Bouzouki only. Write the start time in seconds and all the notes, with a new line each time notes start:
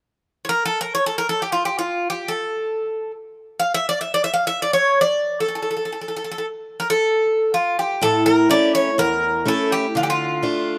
0.45 C#5
0.49 A#4
0.66 A4
0.81 A#4
0.95 C#5
1.06 A4
1.18 A#4
1.29 A4
1.42 G4
1.52 F4
1.65 G4
1.79 F4
2.10 G4
2.28 A4
3.60 F5
3.74 E5
3.89 D5
4.01 E5
4.14 D5
4.24 E5
4.34 F5
4.47 E5
4.62 D5
4.73 C#5
5.01 D5
5.40 A4
5.48 A4
5.55 A4
5.62 A4
5.71 A4
5.77 A4
5.85 A4
5.92 A4
6.01 A4
6.08 A4
6.17 A4
6.24 A4
6.32 A4
6.38 A4
6.80 A#4
6.90 A4
7.54 F4
7.79 G4
8.03 A4
8.26 A#4
8.51 D5
8.75 C#5
8.99 A#4
9.48 A4
9.72 G4
9.97 F4
10.03 G4
10.10 F4